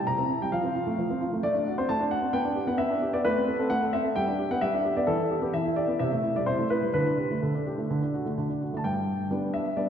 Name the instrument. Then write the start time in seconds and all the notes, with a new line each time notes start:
grand piano
0.07 C3 A#5
0.18 C4
0.30 E4
0.42 G3 G5
0.52 F3 F5
0.64 C4
0.75 F4
0.87 A3
0.98 F3
1.10 C4
1.21 F4
1.33 A3
1.43 A3 D5
1.55 D4
1.67 F#4
1.78 C4 C5
1.89 A3 A5
2.00 D4
2.11 F#4 F#5
2.22 C4
2.33 B3 G5
2.45 D4
2.56 G4
2.67 B3 F#5
2.78 B3 E5
2.90 D4
3.02 G4
3.13 B3 D5
3.24 A3 B4
3.36 C4
3.48 A4
3.59 C4 A4
3.70 A3 F#5
3.82 A4
3.93 C4 E5
4.04 A4
4.16 G3 G5
4.28 D4
4.39 G4
4.51 B3 F#5
4.61 G3 E5
4.74 D4
4.85 G4
4.97 B3 D5
5.07 E3 A4
5.18 E4
5.30 G4
5.41 B3 G4
5.53 E3 E5
5.65 E4
5.76 G4 D5
5.88 B3
5.99 C3 E5
6.11 A3
6.23 E4
6.36 G3 D5
6.46 C3 C5
6.59 A3
6.70 E4 B4
6.82 G3
6.94 D3 B4
7.06 D4
7.18 G4
7.31 A3
7.42 D3 A4
7.55 D4
7.66 G4
7.78 A3
7.90 D3
8.02 D4
8.14 F#4
8.25 A3
8.38 D3
8.49 D4
8.61 F#4
8.73 A3 A5
8.84 G2 G5
9.31 G3 B3 D4
9.54 E5
9.77 G3 B3 D4 D5